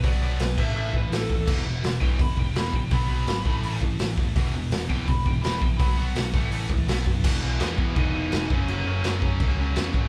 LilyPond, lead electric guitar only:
\new Staff \with { instrumentName = "Lead electric guitar" } { \time 4/4 \key a \lydian \tempo 4 = 167 d''8 d''8 b'8 e''8 e''8 b'8 a'4 | r4. g''8 b''8 g''8 b''8 g''8 | b''8 b''2 r4. | r4. g''8 b''8 g''8 b''8 g''8 |
b''8 fis''2 r4. | r4 <b b'>4 <dis' dis''>4. <cis' cis''>8~ | <cis' cis''>8 <cis' cis''>2. r8 | }